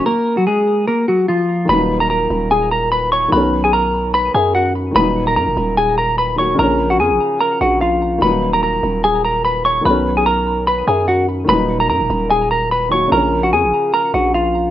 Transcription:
<<
  \new Staff \with { instrumentName = "Clean electric guitar" } { \time 4/4 \key ees \minor \tempo 4 = 147 <bes bes'>8. <ges ges'>16 <aes aes'>4 <bes bes'>8 <ges ges'>8 <f f'>4 | <ces'' ces'''>8. <bes' bes''>16 <bes' bes''>4 <aes' aes''>8 <bes' bes''>8 <ces'' ces'''>8 <des'' des'''>8 | <b' b''>8. <aes' aes''>16 <bes' bes''>4 <b' b''>8 <aes' aes''>8 <fis' fis''>8 r8 | <ces'' ces'''>8. <bes' bes''>16 <bes' bes''>4 <aes' aes''>8 <bes' bes''>8 <ces'' ces'''>8 <des'' des'''>8 |
<bes' bes''>8. <ges' ges''>16 <aes' aes''>4 <bes' bes''>8 <ges' ges''>8 <f' f''>4 | <ces'' ces'''>8. <bes' bes''>16 <bes' bes''>4 <aes' aes''>8 <bes' bes''>8 <ces'' ces'''>8 <des'' des'''>8 | <b' b''>8. <aes' aes''>16 <bes' bes''>4 <b' b''>8 <aes' aes''>8 <fis' fis''>8 r8 | <ces'' ces'''>8. <bes' bes''>16 <bes' bes''>4 <aes' aes''>8 <bes' bes''>8 <ces'' ces'''>8 <des'' des'''>8 |
<bes' bes''>8. <ges' ges''>16 <aes' aes''>4 <bes' bes''>8 <ges' ges''>8 <f' f''>4 | }
  \new Staff \with { instrumentName = "Felt piano" } { \clef bass \time 4/4 \key ees \minor r1 | <bes, ees ges ees'>1 | <dis fis b cis'>1 | <bes, ees ges ees'>2.~ <bes, ees ges ees'>8 <ees ges bes ges'>8 |
<des f bes des'>1 | <bes, ees ges ees'>1 | <dis fis b cis'>1 | <bes, ees ges ees'>2.~ <bes, ees ges ees'>8 <ees ges bes ges'>8 |
<des f bes des'>1 | }
  \new Staff \with { instrumentName = "808-style bass" } { \clef bass \time 4/4 \key ees \minor r1 | ees,,4. ees,,2~ ees,,8 | b,,2~ b,,8 fis,4. | ees,,4 ges,16 ees,,16 ees,,2~ ees,,8 |
bes,,4 f,16 bes,,16 r4 bes,,4. | ees,,4. ees,,2~ ees,,8 | b,,2~ b,,8 fis,4. | ees,,4 ges,16 ees,,16 ees,,2~ ees,,8 |
bes,,4 f,16 bes,,16 r4 bes,,4. | }
>>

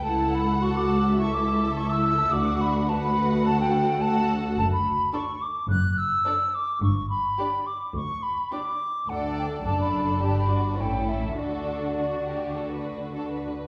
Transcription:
<<
  \new Staff \with { instrumentName = "Flute" } { \time 4/4 \key d \major \tempo 4 = 106 a''8 b''8 cis'''16 d'''8. cis'''16 d'''8. cis'''16 e'''8. | d'''8 b''8 a''16 b''8. a''16 g''8. a''8. r16 | a''16 b''8. cis'''8 d'''8 fis'''8 e'''4 d'''8 | cis'''8 b''4 d'''8 cis'''8 b''8 d'''4 |
fis''8 g''8 a''16 b''8. a''16 b''8. g''8 e''8 | d''2. r4 | }
  \new Staff \with { instrumentName = "Violin section" } { \time 4/4 \key d \major fis''2 e''2 | fis''4 fis''2 fis''4 | r4 d''4 r4 d''4 | r4 d''4 r4 d''4 |
d''4 d''4 d''4 a'4 | a'4 fis'8 g'8 a'16 b'8. a'16 b'8. | }
  \new Staff \with { instrumentName = "Violin section" } { \time 4/4 \key d \major a'4 a'4 a'2 | fis'4 b'4 a'4 a'4 | r4 a'4 r4 a'4 | r4 g'4 r4 g'4 |
a'4 a'4 g'8 fis'8 e'4 | fis'2.~ fis'8 r8 | }
  \new Staff \with { instrumentName = "Viola section" } { \time 4/4 \key d \major e'4 fis'4 e'4 e'4 | d'4 fis'2 fis'4 | r4 d'4 r4 d'4 | r4 d'4 r4 d'4 |
d'4 d'4 d'4 cis'4 | d'2.~ d'8 r8 | }
  \new Staff \with { instrumentName = "Cello section" } { \clef bass \time 4/4 \key d \major cis,1 | d,1 | fis,4 r4 fis,4 r4 | g,4 r4 d,4 r4 |
d,4 fis,4 g,4 a,4 | d2.~ d8 r8 | }
  \new Staff \with { instrumentName = "Double bass section" } { \clef bass \time 4/4 \key d \major cis,1 | d,1 | fis,,4 r4 fis,,4 r4 | g,,4 r4 d,4 r4 |
d,4 fis,,4 g,,4 a,,4 | d,2.~ d,8 r8 | }
>>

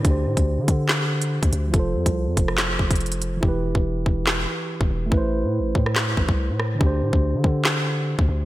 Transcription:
<<
  \new Staff \with { instrumentName = "Tine electric piano" } { \time 4/4 \key d \dorian \tempo 4 = 142 <d d' g' c''>1 | <f f' a' c''>1 | <e e' g' b'>1 | <a e' b' c''>1 |
<d d' g' c''>1 | }
  \new Staff \with { instrumentName = "808-style bass" } { \clef bass \time 4/4 \key d \dorian d,8 a,16 d,8 d16 d4.~ d16 d,16 d,8 | f,,8 f,16 c,8 f,16 f,,4 f,,4. | e,,8. e,,8. e,,4 r8. e,,16 e,,8 | a,,8. a,16. a,,16. a,4 a,,16 c,8 a,8. |
d,8 a,16 d,8 d16 d4.~ d16 d,16 d,8 | }
  \new DrumStaff \with { instrumentName = "Drums" } \drummode { \time 4/4 <hh bd>8. <hh bd>16 r8 <hh bd>8 <hc sn>8. hh16 r16 <hh bd>16 hh8 | <hh bd>8. <hh bd>16 r8 <hh bd>16 ss16 <hc hh sn>8 bd16 <hh bd>32 hh32 hh32 hh32 hh16 hh8 | bd8. bd16 r8 bd8 <hc sn>4 r16 bd8. | bd4 r8 bd16 ss16 <hc sn>8 bd16 bd16 r8 ss8 |
bd8. bd16 r8 bd8 <hc sn>4 r16 bd8. | }
>>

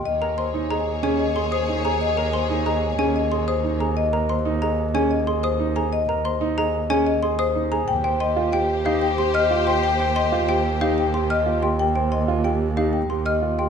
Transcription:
<<
  \new Staff \with { instrumentName = "Xylophone" } { \time 6/4 \key ees \mixolydian \tempo 4 = 184 r8 bes''8 c'''8 r8 bes''8 r8 aes''8 r8 c'''8 ees'''8 r8 bes''8 | r8 bes''8 c'''8 r8 bes''8 r8 aes''8 r8 c'''8 ees'''8 r8 bes''8 | r8 bes''8 c'''8 r8 bes''8 r8 aes''8 r8 c'''8 ees'''8 r8 bes''8 | r8 bes''8 c'''8 r8 bes''8 r8 aes''8 r8 c'''8 ees'''8 r8 bes''8 |
r8 g''8 c'''8 r8 g''8 r8 f''8 r8 c'''8 f'''8 r8 g''8 | r8 g''8 c'''8 r8 g''8 r8 f''8 r8 c'''8 f'''8 r8 g''8 | r8 g''8 c'''8 r8 g''8 r8 f''8 r8 c'''8 f'''8 r8 g''8 | }
  \new Staff \with { instrumentName = "Marimba" } { \time 6/4 \key ees \mixolydian ees''8 r8 c''8 r8 ees''8 r8 aes'8 ees''8 r8 c''8 r8 aes''8 | ees''8 r8 c''8 r8 ees''8 r8 aes'8 ees''8 r8 c''8 r8 aes''8 | ees''8 r8 c''8 r8 ees''8 r8 aes'8 ees''8 r8 c''8 r8 aes''8 | ees''8 r8 c''8 r8 ees''8 r8 aes'8 ees''8 r8 c''8 r8 aes''8 |
g''8 r8 ees''8 r8 g''8 r8 g'8 g''8 r8 ees''8 r8 c'''8 | g''8 r8 ees''8 r8 g''8 r8 g'8 g''8 r8 ees''8 r8 c'''8 | g''8 r8 ees''8 r8 g''8 r8 g'8 g''8 r8 ees''8 r8 c'''8 | }
  \new Staff \with { instrumentName = "Violin section" } { \time 6/4 \key ees \mixolydian <aes' des''>1.~ | <aes' des''>1~ <aes' des''>4. r8 | r1. | r1. |
<g' c''>1.~ | <g' c''>1~ <g' c''>4. r8 | r1. | }
  \new Staff \with { instrumentName = "Grand piano" } { \time 6/4 \key ees \mixolydian r8 bes'8 r8 ees'8 aes'8 r8 des'8 r8 aes'8 r8 ees'8 aes'8 | r8 bes'8 r8 ees'8 aes'8 r8 des'8 r8 aes'8 r8 ees'8 aes'8 | r8 bes'8 r8 ees'8 aes'8 r8 des'8 r8 aes'8 r8 ees'8 aes'8 | r8 bes'8 r8 ees'8 aes'8 r8 des'8 r8 aes'8 r8 ees'8 aes'8 |
r8 c''8 r8 f'8 g'8 r8 ees'8 r8 g'8 r8 f'8 g'8 | r8 c''8 r8 f'8 g'8 r8 ees'8 r8 g'8 r8 f'8 g'8 | r8 c''8 r8 f'8 g'8 r8 ees'8 r8 g'8 r8 f'8 g'8 | }
  \new Staff \with { instrumentName = "Double bass" } { \clef bass \time 6/4 \key ees \mixolydian ees,1.~ | ees,1.~ | ees,1.~ | ees,1. |
ees,1.~ | ees,1.~ | ees,1. | }
>>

